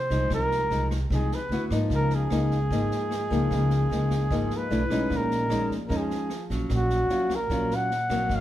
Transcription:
Already playing: C3 C5
0.10 C2 F3 G#3 D#4, kick, snare
0.30 C2 C3, kick, cross-stick, snare
0.34 A#4
0.51 snare
0.70 C2 F3 G#3 D#4, snare
0.91 kick, cross-stick, snare
1.10 C2 C3 F3 G#3 D#4, kick, snare
1.15 G#4
1.31 B4, snare
1.49 D2 B3 E4 F#4, snare
1.70 G#2 F3 A#3 D#4, kick, cross-stick, snare
1.90 C#2 C#3, kick, snare
1.95 A#4
2.10 snare
2.15 G#4
2.30 C#2 F3 A#3 D#4, cross-stick, snare
2.50 kick, snare
2.71 G#1 G#2 F3 A#3 D#4, kick, snare
2.91 snare
3.11 cross-stick, snare
3.30 C#2 F3 A#3 D#4, kick, snare
3.50 C#2 C#3, kick, cross-stick, snare
3.70 snare
3.90 C#2 F3 A#3 D#4, snare
4.11 kick, cross-stick, snare
4.30 G#1 G#2 F3 A#3 D#4, kick, snare
4.50 snare
4.57 B4
4.71 B1 A3 D4 E4, snare
4.90 B1 G#3 C#4 D#4, kick, cross-stick, snare
5.09 A#1 A#2, kick, snare
5.16 A#4
5.31 snare
5.49 A#1 G#3 C#4 D#4, cross-stick, snare
5.70 kick, snare
5.88 F2 F3 G#3 C#4 D#4 A#4, kick, snare
5.97 G#4
6.10 snare
6.30 cross-stick, snare
6.50 A#1 F#3 C#4, kick, snare
6.69 A#1 A#2, kick, cross-stick, snare
6.76 F#4
6.90 snare
7.09 A#1 F#3 C#4 F4, snare
7.30 kick, cross-stick, snare
7.35 A#4
7.50 A#1 A#2 F#3 C#4 F4, kick, snare
7.71 snare
7.75 F#5
7.91 snare
8.09 A#1 F#3 A#3 C4, kick, cross-stick, snare
8.29 G#1 G#2, kick, snare
8.35 F5

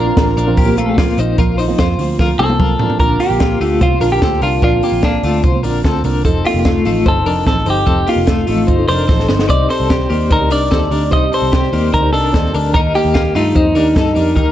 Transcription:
Already playing: A#1 A#3 D4 A#4 F5 C6
0.06 A#3 C4 F4
0.17 A1, kick, snare, hi-hat pedal, open hi-hat
0.36 A#1 D4 A#4, hi-hat pedal, open hi-hat
0.47 A#2 F3 A#3 C4 F4
0.57 A#3 G4, kick, hi-hat pedal, open hi-hat
0.66 A#3 C4 F4
0.77 A3 F4, hi-hat pedal, open hi-hat
0.97 F3 A#3 C4 F4, kick, snare, hi-hat pedal, open hi-hat
1.18 A#1 D#4 C5, hi-hat pedal, open hi-hat
1.38 A#1 F3 A#3 C4 F4 A#4, kick, closed hi-hat
1.58 D#4 C5, open hi-hat
1.68 A#2 F3 A#3 C4 F4
1.78 F2 F4 C5, kick, snare, closed hi-hat
1.98 D2 F3 A#3 C4 F4, open hi-hat
2.18 F3 A#3 C4 F4 A#4, kick, snare
2.39 C2 C4 A4, high tom
2.49 A#3 C4 F4, high tom
2.60 F4 A#4, kick, mid tom
2.79 F3 A#3 C4 D4 F4 A#4, floor tom
2.90 floor tom
2.99 A#1 A#2 D3 A#3 C4 D4 F4 A#4, kick, closed hi-hat
3.20 A#3 G4, open hi-hat
3.30 A#1
3.40 A#3 F4, kick, snare, closed hi-hat
3.61 D2 D3 A3 A#3 C4 F4, open hi-hat
3.81 C2 F4 C5, kick, closed hi-hat
3.91 A#3 C4
4.00 A#1 D3 A#3 C4 D4 F4 A#4, open hi-hat
4.12 G4
4.21 D2 D3 A#3 C4 F4 A4, kick, snare, closed hi-hat
4.41 C2 D3 A#3 C4 D4 F4 A#4, open hi-hat
4.62 A#1 A#2 D3 A#3 C4 D4 F4 A#4, kick, closed hi-hat
4.83 A#3 G4, open hi-hat
4.92 A#1
5.03 A#3 D4 F4, kick, snare, closed hi-hat
5.23 D2 D3 A3 A#3 C4 F4, open hi-hat
5.43 C2 F4 C5, kick, closed hi-hat
5.53 A#3 C4 F4
5.63 A#1 D3 A#3 C4 D4 F4 A#4, open hi-hat
5.83 D2 D3 A#3 C4 F4 A4, kick, snare, closed hi-hat
6.04 C2 D3 A#3 C4 D4 F4 A#4, open hi-hat
6.24 F1 F3 C4 D#4 A4, kick, closed hi-hat
6.45 A#3 F4 G4, open hi-hat
6.54 F1
6.65 A3 F4, kick, snare, closed hi-hat
6.84 A1 F3 A3 C4 D#4 F4 A4, open hi-hat
7.06 G1 D#4 A4 C5, kick, closed hi-hat
7.16 C4 D#4 A4
7.25 F1 F3 C4 D4 D#4 A4 A#4, open hi-hat
7.45 A1 F3 C4 D#4 A4, kick, snare, closed hi-hat
7.65 G1 F3 C4 D#4 A4 C5, open hi-hat
7.70 G4
7.86 F1 F3 C4 D#4 A4, kick, closed hi-hat
8.07 A#3 F4 G4, open hi-hat
8.16 F1
8.27 A3 F4, kick, snare, closed hi-hat
8.47 A1 F3 A3 C4 D#4 F4 A4, open hi-hat
8.67 G1 D#4 C5, kick, closed hi-hat
8.78 C4 D#4 A4
8.88 F1 F3 C4 D4 D#4 A4 A#4 C5, open hi-hat
9.08 A1 F3 C4 D#4 A4, kick, snare
9.20 snare
9.28 G1 F3 C4 D#4 A4 C5, snare
9.39 snare
9.49 C2 C3 G3 C4 D#4 G4 C5 D5, kick, closed hi-hat
9.69 C4 A4 C5, open hi-hat
9.80 C2
9.90 C4 G4, kick, snare, closed hi-hat
10.09 D#2 A#3 C4 D#4 G4 D5, open hi-hat
10.31 D2 D#4 A#4 C5, kick, closed hi-hat
10.40 C4 D#4 G4 D5
10.50 C2 C4 D4 D#4 G4 A#4 D5, open hi-hat
10.70 D#2 C4 D#4 G4 A4 D5, kick, snare
10.90 D2 C4 D4 D#4 G4 A#4 D5, open hi-hat
11.10 C2 C3 G3 C4 D#4 G4 C5 D5 D#5, kick, closed hi-hat
11.32 C4 A4 C5, open hi-hat
11.42 C2
11.52 C4 G4, kick, snare, closed hi-hat
11.71 D#2 A#3 C4 D#4 G4 D5, open hi-hat
11.93 D2 D#4 A#4 C5, kick, closed hi-hat
12.02 C4 D#4 G4 D5
12.12 C2 C4 D4 D#4 G4 A4 A#4 D5, open hi-hat
12.32 D#2 C4 D#4 G4 A4 D5, kick, snare, closed hi-hat
12.52 D2 C4 D4 D#4 G4 A#4 D5, open hi-hat
12.72 D#2 D#3 G3 A#3 D#4 G4 A#4, kick, closed hi-hat
12.76 D#4
12.95 A#3 G4, open hi-hat
13.05 D#2
13.14 A#3 F4, kick, snare, closed hi-hat
13.33 G2 G3 A3 A#3 D#4 F4 G4, open hi-hat
13.55 F2 D#4 C5, kick, closed hi-hat
13.63 A#3 D#4 G4
13.75 D#2 G3 A#3 D4 D#4 G4 A#4, open hi-hat
13.94 G2 G3 A#3 D#4 G4 A4, kick, snare, closed hi-hat
14.15 F2 G3 A#3 D4 D#4 G4 A#4, open hi-hat
14.35 D#2 D#3 G3 A#3 D#4 G4 A#4, kick, closed hi-hat

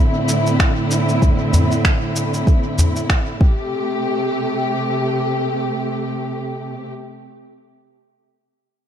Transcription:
Already playing: A2 D3 C4 E4
0.28 shaker
0.46 shaker
0.60 finger snap, kick, shaker
0.91 shaker
1.09 shaker
1.22 kick, udu, shaker
1.53 udu, shaker
1.71 shaker
1.85 finger snap, kick, shaker
2.16 shaker
2.34 shaker
2.47 kick, shaker
2.78 udu, shaker
2.96 shaker
3.09 finger snap, kick, shaker
3.41 C3 A3 G4, kick

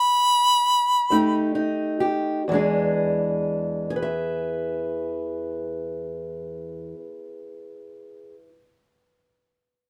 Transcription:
Already playing: B5
1.10 F2 A3 D#4 G4
1.55 D#4
2.00 G4
2.48 E2 E3 G#3
2.53 D4 G#4
3.90 G#4
3.96 B4
4.02 E5

